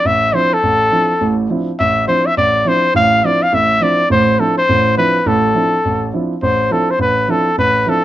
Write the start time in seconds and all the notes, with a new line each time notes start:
0.05 A1 E5
0.33 F3 C4 D4 E4 C5
0.53 A4
0.63 A1
0.92 F3 C4 D4 E4
1.21 A1 A2
1.50 F3 C4 D4 E4
1.79 A1 E5
2.08 F3 C4 D4 E4 C5
2.26 E5
2.37 A1 D5
2.65 F3 C4 D4 E4 C5
2.94 A1 A2 F5
3.24 F3 C4 D4 E4 D5
3.42 F5
3.52 A1 A2 E5
3.80 F3 C4 D4 E4 D5
4.10 A1 A2 C5
4.39 F3 C4 D4 E4 A4
4.58 C5
4.69 A1 A2
4.97 F3 C4 D4 E4 B4
5.26 A1 A2 A4
5.54 F3 C4 D4 E4
5.85 A1
6.14 F3 C4 D4 E4
6.42 A1 C5
6.71 F3 C4 D4 E4 A4
6.91 C5
6.99 A1 B4
7.28 F3 C4 D4 E4 A4
7.58 A1 B4
7.86 F3 C4 D4 E4 A4